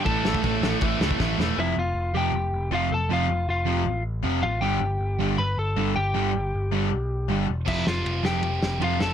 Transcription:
0.05 0.17 A1 loud
0.05 0.23 A2 medium
0.05 0.24 E3 loud
0.05 0.24 A3 loud
0.05 0.77 A4 medium
0.05 0.78 A5 loud
0.05 kick loud
0.05 crash medium
0.24 0.37 A1 medium
0.24 0.41 A2 medium
0.24 0.42 E3 medium
0.24 0.42 A3 medium
0.24 snare loud
0.34 kick loud
0.43 0.55 A1 medium
0.43 0.61 A2 medium
0.43 0.61 E3 medium
0.43 0.62 A3 loud
0.43 kick medium
0.43 crash medium
0.62 0.73 A1 medium
0.62 0.80 A2 medium
0.62 0.81 E3 loud
0.62 0.81 A3 loud
0.62 snare loud
0.81 0.93 A1 loud
0.81 1.00 A2 medium
0.81 1.01 E3 loud
0.81 1.01 A3 loud
0.81 kick loud
0.81 crash medium
1.01 1.12 C#2 medium
1.01 1.19 A2 medium
1.01 1.19 E3 medium
1.01 1.19 A3 medium
1.01 snare loud
1.11 kick medium
1.20 1.32 A1 medium
1.20 1.38 A2 medium
1.20 1.38 E3 loud
1.20 1.39 A3 loud
1.20 kick loud
1.20 snare medium
1.39 1.50 E1 medium
1.39 1.57 A2 medium
1.39 1.57 E3 medium
1.39 1.57 A3 medium
1.39 snare medium
1.58 1.76 F1 medium
1.58 1.73 F2 medium
1.58 1.73 C3 medium
1.58 1.74 F3 medium
1.58 1.76 E4 medium
1.58 1.79 E5 medium
1.77 1.94 F1 medium
1.77 2.13 F4 medium
1.77 2.17 F5 medium
1.95 2.14 F1 medium
2.15 2.32 F1 medium
2.15 2.30 F2 loud
2.15 2.31 C3 loud
2.15 2.31 F3 loud
2.15 2.68 G4 medium
2.15 2.75 G5 medium
2.32 2.51 F1 medium
2.53 2.71 F1 medium
2.71 2.91 F1 medium
2.71 2.87 F2 loud
2.71 2.87 C3 loud
2.71 2.88 F3 loud
2.71 2.90 F4 medium
2.71 2.93 F5 medium
2.92 3.10 F1 medium
2.92 3.10 A4 medium
2.92 3.12 A5 medium
3.10 3.28 F1 medium
3.10 3.26 F2 medium
3.10 3.26 C3 medium
3.10 3.26 F3 loud
3.10 3.46 F4 medium
3.10 3.49 F5 loud
3.29 3.47 F1 medium
3.49 3.84 F1 medium
3.49 4.02 F4 medium
3.49 4.03 F5 medium
3.66 3.82 F2 medium
3.66 3.83 C3 medium
3.66 3.83 F3 loud
3.85 4.22 A1 medium
4.23 4.42 F1 medium
4.23 4.39 F2 loud
4.23 4.40 C3 loud
4.23 4.40 F3 loud
4.42 4.60 A1 medium
4.42 4.61 F4 medium
4.42 4.63 F5 medium
4.60 4.80 G1 medium
4.60 4.78 G2 medium
4.60 4.78 D3 medium
4.60 4.78 G3 loud
4.60 5.35 G4 medium
4.60 5.41 G5 loud
4.81 4.99 G1 medium
5.00 5.19 G1 medium
5.20 5.38 G1 medium
5.20 5.35 G2 loud
5.20 5.36 D3 loud
5.20 5.36 G3 loud
5.38 5.57 G1 medium
5.38 5.57 B4 medium
5.38 5.58 B5 loud
5.58 5.76 G1 medium
5.58 5.94 A4 medium
5.58 5.98 A5 loud
5.77 5.96 G1 medium
5.77 5.92 G2 loud
5.77 5.93 D3 medium
5.77 5.93 G3 loud
5.96 6.15 G1 medium
5.96 7.45 G4 medium
5.96 7.44 G5 loud
6.14 6.34 G1 medium
6.14 6.30 G2 medium
6.14 6.31 D3 medium
6.14 6.31 G3 loud
6.36 6.53 G1 medium
6.54 6.90 G1 medium
6.72 6.87 G2 medium
6.72 6.88 D3 loud
6.72 6.88 G3 loud
6.93 7.29 B1 medium
7.29 7.48 G1 medium
7.29 7.44 G2 loud
7.29 7.45 D3 loud
7.29 7.45 G3 loud
7.49 7.67 E1 medium
7.66 7.86 F1 medium
7.66 7.82 F2 medium
7.66 7.82 C3 medium
7.66 7.83 F3 loud
7.66 7.86 E4 medium
7.66 7.88 E5 medium
7.66 kick loud
7.66 crash loud
7.86 8.05 F1 medium
7.86 8.23 F4 medium
7.86 8.25 F5 medium
7.86 snare loud
8.04 8.23 F1 medium
8.04 8.23 F2 medium
8.04 8.23 C3 medium
8.04 8.24 F3 medium
8.04 ride medium
8.23 8.42 F1 medium
8.23 8.39 F2 loud
8.23 8.39 C3 loud
8.23 8.40 F3 loud
8.23 8.78 G4 medium
8.23 8.84 G5 loud
8.23 snare loud
8.42 8.61 F1 loud
8.42 8.80 F2 medium
8.42 8.80 C3 medium
8.42 8.81 F3 loud
8.42 ride medium
8.61 8.80 F1 loud
8.61 snare loud
8.80 9.00 F1 medium
8.80 8.96 F2 loud
8.80 8.97 C3 loud
8.80 8.97 F3 loud
8.80 9.00 F4 medium
8.80 9.03 F5 medium
8.80 ride medium
9.00 9.14 F1 loud
9.00 9.14 F2 medium
9.00 9.14 C3 medium
9.00 9.14 F3 medium
9.00 9.14 A4 medium
9.00 9.14 A5 medium
9.00 snare loud

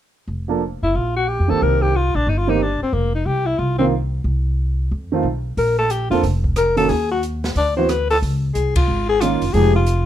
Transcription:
0.27 0.78 F1 medium
0.48 0.59 F3 medium
0.48 0.60 A#3 medium
0.48 0.60 D4 medium
0.48 0.60 A4 medium
0.82 0.94 F#1 medium
0.82 0.97 E4 medium
0.95 1.36 A#1 medium
0.95 1.15 F4 medium
1.16 1.29 F#4 medium
1.28 1.51 G4 medium
1.40 1.49 F2 medium
1.48 1.61 G2 medium
1.48 1.91 D#3 medium
1.48 1.91 A#3 soft
1.48 1.91 C4 soft
1.48 1.92 G4 medium
1.48 1.64 A4 medium
1.62 2.11 C2 medium
1.62 1.83 A#4 medium
1.82 1.98 G4 medium
1.96 2.17 F4 medium
2.15 2.26 A#1 medium
2.15 2.30 D4 medium
2.27 2.77 G1 medium
2.27 2.39 D#4 medium
2.38 2.51 F4 medium
2.47 2.58 D#3 medium
2.47 2.59 A#3 medium
2.47 2.59 C4 medium
2.47 2.64 D#4 medium
2.47 2.59 G4 medium
2.62 2.82 D4 medium
2.81 2.95 C4 medium
2.81 muted upright bass stroke soft
2.93 3.23 F1 medium
2.93 3.14 A#3 medium
3.15 3.27 D#4 medium
3.26 3.56 C2 medium
3.26 3.48 G4 medium
3.46 3.60 E4 medium
3.58 4.22 C2 medium
3.58 3.78 F4 medium
3.78 3.90 D#3 medium
3.78 3.91 A#3 soft
3.78 3.86 C4 medium
3.78 3.91 C4 medium
3.78 3.91 F4 medium
4.24 4.87 C2 medium
4.91 5.22 F2 medium
5.12 5.23 D#3 medium
5.12 5.24 A3 medium
5.12 5.24 C4 medium
5.12 5.24 F4 medium
5.23 5.54 B1 medium
5.57 6.07 A#1 medium
5.57 5.77 A#4 medium
5.57 kick soft
5.57 open hi-hat soft
5.78 5.93 A4 medium
5.90 6.10 G4 medium
5.90 closed hi-hat soft
6.10 6.22 F2 medium
6.10 6.22 D3 medium
6.10 6.22 A#3 medium
6.10 6.23 C4 medium
6.10 6.22 F4 medium
6.10 6.23 A4 medium
6.10 open hi-hat soft
6.23 6.86 F1 medium
6.23 kick soft
6.23 open hi-hat soft
6.44 kick soft
6.56 6.76 A#4 medium
6.56 cross-stick medium
6.56 closed hi-hat soft
6.76 6.88 D#3 medium
6.76 6.88 A#3 soft
6.76 6.89 C#4 medium
6.76 6.89 F#4 medium
6.76 6.91 A4 medium
6.76 open hi-hat soft
6.89 7.53 D#2 medium
6.89 7.10 G#4 medium
6.89 kick soft
6.89 open hi-hat soft
7.11 7.22 F#4 medium
7.23 closed hi-hat soft
7.44 snare soft
7.44 open hi-hat soft
7.55 8.18 D2 medium
7.55 7.76 D5 medium
7.55 kick soft
7.55 open hi-hat soft
7.77 7.88 E3 medium
7.77 7.88 B3 medium
7.77 7.88 C4 medium
7.77 7.89 F#4 medium
7.77 7.91 C5 medium
7.89 8.10 B4 medium
7.89 cross-stick medium
7.89 closed hi-hat soft
8.10 8.17 A4 medium
8.10 open hi-hat soft
8.22 8.53 C#2 medium
8.22 kick soft
8.22 open hi-hat soft
8.54 8.86 C2 medium
8.54 8.74 G#4 medium
8.54 closed hi-hat soft
8.76 9.07 F4 medium
8.76 kick medium
8.76 ride medium
8.88 9.38 G#1 medium
9.09 9.22 G#4 medium
9.20 9.40 D#3 medium
9.20 9.41 A#3 medium
9.20 9.41 C#4 medium
9.20 9.55 F4 medium
9.20 9.41 F4 medium
9.20 cross-stick medium
9.20 closed hi-hat medium
9.42 9.53 F#1 medium
9.42 open hi-hat soft
9.53 10.04 F1 medium
9.53 9.73 F3 medium
9.53 9.73 G#3 medium
9.53 9.74 D#4 medium
9.53 9.74 G4 medium
9.53 9.74 G#4 medium
9.53 kick soft
9.53 open hi-hat soft
9.76 10.06 F4 medium
9.86 closed hi-hat medium

